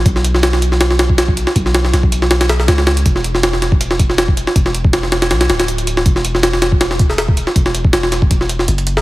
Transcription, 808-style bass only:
X:1
M:4/4
L:1/8
Q:"Swing 16ths" 1/4=160
K:Clyd
V:1 name="808-style bass" clef=bass
B,,,6- B,,, z | B,,,2 B,,,4 ^C,,2 | E,,,6- E,,, z | E,,,2 E,,,2 B,,, D,,,3 |
E,,,6- E,,, z | E,,,2 E,,,4 F,,,2 |]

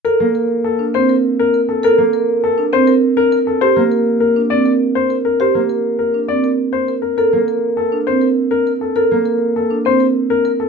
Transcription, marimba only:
X:1
M:3/4
L:1/16
Q:1/4=101
K:Bb
V:1 name="Marimba"
A z B z2 D C B z2 B z | A z B z2 D C B z2 B z | G z B z2 D C B z2 B z | G z B z2 D C B z2 B z |
A z B z2 D C B z2 B z | A z B z2 D C B z2 B z |]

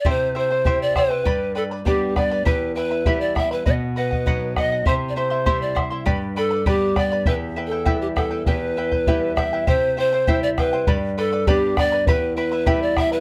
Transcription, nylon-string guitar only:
X:1
M:2/4
L:1/8
Q:1/4=100
K:Clyd
V:1 name="Nylon-string guitar"
C,2 [CEG]2 | G,,2 [G,B,D]2 | E,,2 [G,B,E]2 | B,,2 [F,B,^D]2 |
C,2 [G,CE]2 | G,,2 [G,B,D]2 | E,,2 [G,B,E]2 | E,,2 [G,B,E]2 |
C,2 [G,CE]2 | G,,2 [G,B,D]2 | E,,2 [G,B,E]2 |]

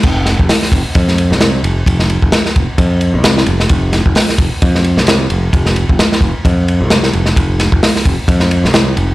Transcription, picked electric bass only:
X:1
M:4/4
L:1/16
Q:"Swing 16ths" 1/4=131
K:Cm
V:1 name="Picked electric bass" clef=bass
F,,,3 F,,, z2 F,,, z F,,3 C,,3 F,,,2 | F,,,3 F,,, z2 F,,, z F,,3 C,,3 F,,,2 | F,,,3 F,,, z2 F,,, z F,,3 C,,3 F,,,2 | F,,,3 F,,, z2 F,,, z F,,3 C,,3 F,,,2 |
F,,,3 F,,, z2 F,,, z F,,3 C,,3 F,,,2 |]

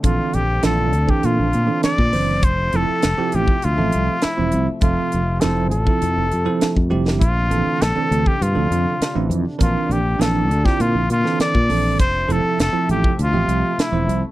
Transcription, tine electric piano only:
X:1
M:4/4
L:1/16
Q:1/4=100
K:Bblyd
V:1 name="Tine electric piano"
[E,CDA]3 z [E,CDF]2 z [E,CDA]3 z [E,CDA]2 z [E,CDc]2 | z2 [F,CEA]2 z [F,CEG]3 z [F,CAe]3 z [F,CEc]2 z | [F,CAe]3 z [F,CEc]2 z [F,CEA]3 z [F,CEA]2 z [F,CEG]2 | z2 [E,CDA]2 z [E,CDA]3 z [F,CDA]3 z [E,CDE]2 z |
[E,CDB]3 z [E,CDA]2 z [CDEF]3 z [E,CDA]2 z [E,CDA]2 | z2 [F,CEA]2 z [F,CEA]3 z [F,CGe]3 z [F,CEc]2 z |]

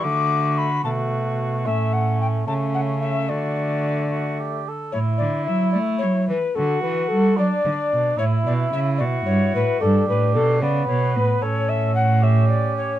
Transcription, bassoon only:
X:1
M:6/8
L:1/8
Q:3/8=74
K:Amix
V:1 name="Bassoon"
A,3 A,3 | A,3 A,3 | A,4- A, z | E6 |
F3 D3 | E3 E3 | D3 B,3 | C3 C3 |]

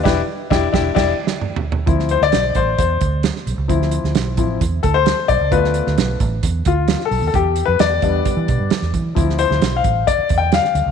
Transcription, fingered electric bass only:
X:1
M:4/4
L:1/16
Q:1/4=132
K:Ddor
V:1 name="Fingered electric bass" clef=bass
E,,,2 z2 E,,,2 E,,,2 E,,,2 z6 | D,,3 D,, B,,,2 A,,,2 E,,2 D,,3 z B,,, ^C,, | D,,3 D,, B,,,2 A,,,2 E,,2 D,,3 z B,,, ^C,, | D,,3 D,, B,,,2 A,,,2 E,,2 D,,3 z B,,, _E,, |
E,,3 F,, E,,2 E,,2 z E, B,, G,, z E,, E,2 | D,,3 D,, B,,,2 A,,,2 z2 E,,3 z D,, ^C,, |]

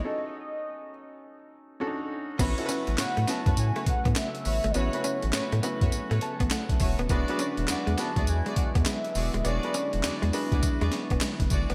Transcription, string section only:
X:1
M:4/4
L:1/16
Q:"Swing 16ths" 1/4=102
K:Alyd
V:1 name="String section"
z16 | [FBc]2 z2 [FBc] z2 [FBc] z [FBc] z4 [FBc] z | [FBc]2 z2 [FBc] z2 [FBc] z [FBc] z4 [FBc] z | [FG=d]2 z2 [FGd] z2 [FGd] z [FGd] z4 [FGd] z |
[FG=d]2 z2 [FGd] z2 [FGd] z [FGd] z4 [FGd] z |]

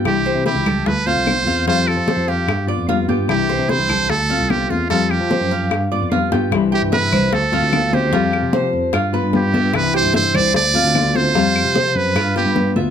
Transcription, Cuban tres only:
X:1
M:4/4
L:1/8
Q:1/4=149
K:C
V:1 name="Cuban tres"
G c E A2 F2 f | F2 c f2 d F G- | G c E A2 F2 f | F2 c f2 d F G |
z G e c2 F2 c | F2 c2 F B2 e- | e G e c2 F2 c | F2 c2 F B2 e |]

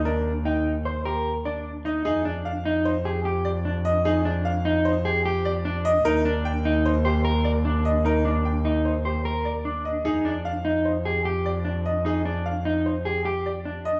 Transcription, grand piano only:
X:1
M:5/4
L:1/8
Q:1/4=150
K:Fdor
V:1 name="Grand piano"
B z g z c G z d z e | A z f z c G z d z e | A z f z c G z d z e | B z g z c G z d z e |
B z g z c G z d z e | A z f z c G z d z e | A z f z c G z d z e |]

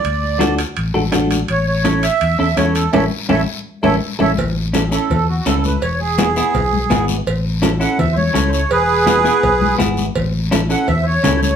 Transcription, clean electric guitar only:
X:1
M:4/4
L:1/8
Q:1/4=166
K:A
V:1 name="Clean electric guitar"
z2 [DFA] z2 [DFA] [DFA] z | z2 [CEA] z2 [CEA] [CEA] z | [CEA] z [CEA] z2 [CEA] z [CEA] | z2 [CEA] [CEA] z2 [CEA] z |
z2 [B,EG] [B,EG] z2 [B,EG] z | z2 [CEA] [CEA] z2 [CEA] z | z2 [B,EG] [B,EG] z2 [B,EG] z | z2 [CEA] [CEA] z2 [CEA] z |]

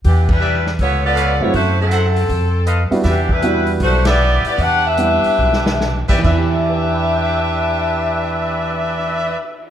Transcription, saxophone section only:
X:1
M:4/4
L:1/8
Q:"Swing" 1/4=152
K:Em
V:1 name="Saxophone section"
[E,B,DG] [G,DEB]2 z [B,^EA^c] [B,EAd]2 [B,EAc] | [A,EFc] [F,CEA]6 z | [E,B,DG] [G,DEB]2 z [A,DFc] [B,EGd]2 [B,EGd] | [DGBf] [DGBe]6 z |
[DGBe]8- | [DGBe]8 |]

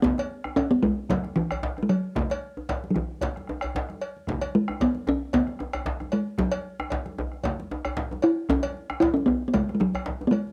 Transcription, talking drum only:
X:1
M:4/4
L:1/16
Q:"Swing 16ths" 1/4=114
K:E
V:1 name="Talking drum" clef=bass
B,4 C B, G,2 F,2 E,3- E,/2 G,/2 F,2- | F,4- F,3/2 F,/2 E,8 z2 | z2 G,2 B,2 C2 B,6 G,2 | F,8 z6 E2 |
C4 E C B,3/2 B,/2 G,3/2 G,/2 F,3- F,/2 B,/2 G,2 |]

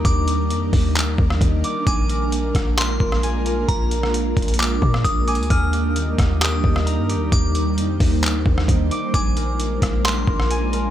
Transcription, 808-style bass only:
X:1
M:4/4
L:1/16
Q:1/4=132
K:Eb
V:1 name="808-style bass" clef=bass
E,,4 F,,2 E,,2 D,, E,, E,,2 E,,2 z2 | B,,,6 B,,,4 B,,,6 | B,,,6 B,,,4 B,,2 B,,,3 D,, | E,,6 E,,4 E,,3 G,,3/2 E,,3/2 |
E,,4 F,,2 E,,2 D,, E,, E,,2 E,,2 z2 | B,,,6 B,,,4 B,,,6 |]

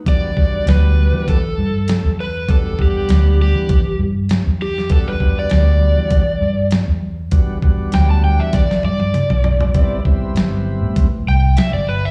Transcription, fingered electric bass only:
X:1
M:4/4
L:1/16
Q:"Swing 16ths" 1/4=99
K:Em
V:1 name="Fingered electric bass" clef=bass
E,,4 D,,3 E,3 G,,2 z E,,3 | E,,4 D,,3 E,3 G,,2 z E,,3 | E,,4 D,,3 E,3 G,,2 z E,,3 | E,,4 D,,3 E,3 G,,2 z B,,,3 |
A,,,4 G,,,3 A,,3 C,,2 z G,,,3 |]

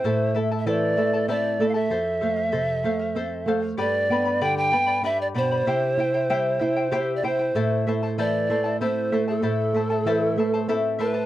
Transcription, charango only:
X:1
M:3/4
L:1/16
Q:1/4=96
K:Am
V:1 name="Charango"
[EAcea]2 [EAea] [EAa] [EAcea]2 [EAea] [EAa] [EAcea]2 [EAea] [EAa] | [Ac]2 [Acf] [cf] [Ac]2 [Acf] [cf] [Ac]2 [Acf] [cf] | [GBdgb]2 [Bdgb] [Bdb] [GBdgb]2 [Bdgb] [Bdb] [GBdgb]2 [Bdgb] [Bdb] | [EGceg]2 [Eceg] [Ecg] [EGceg]2 [Eceg] [Ecg] [EGceg]2 [Eceg] [Ecg] |
[EAcea]2 [Ecea] [Eca] [EAcea]2 [Ecea] [Eca] [EAcea]2 [Ecea] [Eca] | [EAcea]2 [Ecea] [Eca] [EAcea]2 [Ecea] [Eca] [EAcea]2 [Ecea] [Eca] |]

